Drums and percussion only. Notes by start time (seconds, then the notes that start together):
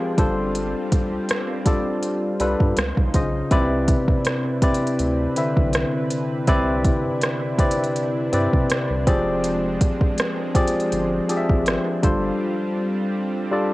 0.18 kick, closed hi-hat
0.55 closed hi-hat
0.92 kick, closed hi-hat
1.29 cross-stick, closed hi-hat
1.66 kick, closed hi-hat
2.03 closed hi-hat
2.40 closed hi-hat
2.60 kick
2.77 cross-stick, closed hi-hat
2.97 kick
3.14 kick, closed hi-hat
3.51 kick, closed hi-hat
3.88 kick, closed hi-hat
4.08 kick
4.25 cross-stick, closed hi-hat
4.62 kick, closed hi-hat
4.74 closed hi-hat
4.87 closed hi-hat
4.99 closed hi-hat
5.36 closed hi-hat
5.57 kick
5.73 cross-stick, closed hi-hat
6.10 closed hi-hat
6.47 kick, closed hi-hat
6.85 kick, closed hi-hat
7.21 cross-stick, closed hi-hat
7.59 kick, closed hi-hat
7.71 closed hi-hat
7.84 closed hi-hat
7.96 closed hi-hat
8.33 closed hi-hat
8.53 kick
8.70 cross-stick, closed hi-hat
9.07 kick, closed hi-hat
9.44 closed hi-hat
9.81 kick, closed hi-hat
10.01 kick
10.18 cross-stick, closed hi-hat
10.55 kick, closed hi-hat
10.68 closed hi-hat
10.80 closed hi-hat
10.92 closed hi-hat
11.29 closed hi-hat
11.49 kick
11.66 cross-stick, closed hi-hat
12.03 kick, closed hi-hat